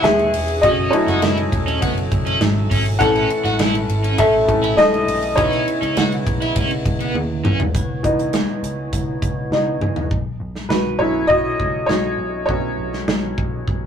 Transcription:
Already playing: E3 C#4 D#4 G#4 C#5 D#5 F#5
0.03 D#2 G#4 E5, snare, ride
0.19 ride
0.34 E1, open hi-hat, ride
0.48 ride
0.61 F#1 F#3 C#4 F#4 A4 D#5, kick, hi-hat pedal, ride
0.91 F#3 A3 C#4 E4 C#5, ride
1.07 F#1 F#4, snare, ride
1.21 F#1 E4, snare, ride
1.38 ride
1.52 E1, kick, ride
1.67 C#4, ride
1.82 F#1 B3, kick, ride
1.97 ride
2.11 F#1, kick, ride
2.26 C#4, ride
2.40 G#1, snare, ride
2.71 G#1 C#4, kick, open hi-hat, ride
2.86 ride
2.99 A1 E3 A3 C#4 E4 A4 F#5, kick, hi-hat pedal, ride
3.15 ride
3.30 ride
3.44 A1 F#4, snare, ride
3.59 A1 E4, snare, ride
3.75 ride
3.88 G#1, ride
4.04 C#4, ride
4.18 A1 C#4 A4 E5, kick, ride
4.48 A1 E3 A3 C#4, kick, ride
4.63 E4, ride
4.77 B1 A4 D#5, snare, ride
4.94 ride
5.08 B1, open hi-hat, ride
5.22 ride
5.36 C#2 C#3 E3 B3 C#4 D#4 E4 C#5, kick, hi-hat pedal, ride
5.53 ride
5.68 ride
5.82 C#2 C#4, ride
5.97 C#2 F#4, snare, ride
6.12 ride
6.27 B1, kick, ride
6.42 E4, ride
6.56 C#2 C#4, kick, ride
6.71 ride
6.86 C#2, kick, ride
7.00 B3, ride
7.14 D#2, high tom
7.45 B1 C#4, mid tom
7.60 floor tom
7.74 C#2 E3 B3 C#5, kick, closed hi-hat
8.03 C#2 E3 B3 D#4, kick, closed hi-hat
8.19 closed hi-hat
8.33 snare, closed hi-hat
8.63 C#2, closed hi-hat
8.93 C#2, kick, closed hi-hat
9.22 C#2, kick, closed hi-hat
9.51 C#2 E3 B3 D#4, snare
9.81 C#2, mid tom
9.96 floor tom
10.11 B1, kick
10.40 B1
10.55 snare
10.69 B1 F#4 B4, snare
10.99 B1 F#3 B3 C#4 E4 C#5
11.27 B1 F#4 D#5, kick
11.59 C#2, kick
11.86 B1 F#4 C#5, snare
12.18 B1
12.46 B1 F#3 B3 C#4 F#4 C#5, kick
12.78 B1
12.93 snare
13.08 B1, snare
13.38 B1, kick
13.68 B1, kick

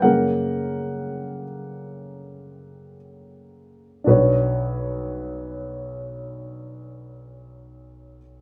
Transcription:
0.02 F#2 C#3 A#3 A#4 F#5
4.04 B1 D4 F#4 B4
4.10 C#5

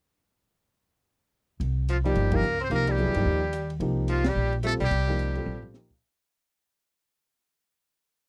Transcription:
1.60 C2, ride
1.89 F3 F4, hi-hat pedal, ride
2.04 F3 G3 A#3 D#4 G4, ride
2.08 G4
2.15 G1, ride
2.32 F3 A#3 D#4 G4, kick, ride
2.36 A#4
2.42 C#2, hi-hat pedal
2.60 C4, ride
2.64 C5
2.70 C2 F3 A#3 D#4 G4, ride
2.74 A#4
2.87 G3, ride
2.91 G4
2.98 F#3 B3 E4 G#4, hi-hat pedal
3.06 D#2
3.14 G2 F3 A#3 D#4 G4, ride
3.25 D#2
3.53 hi-hat pedal, ride
3.70 ride
3.80 C2 F3 A#3 D#4 G4, ride
4.08 F3 F4, hi-hat pedal, ride
4.24 G3, snare, ride
4.29 G4
4.35 A#1
4.53 ride
4.63 G3 A3 C4 F4 A4, hi-hat pedal, ride
4.80 B1 G3 G4, ride
4.91 C2, ride
5.08 F3 A#3 D#4 G4
5.19 hi-hat pedal, ride
5.35 G3 C4 F4 A4, ride
5.45 A#1, high tom
5.63 floor tom
5.74 F3 A#3 D#4 G4, snare, hi-hat pedal
5.90 kick, crash

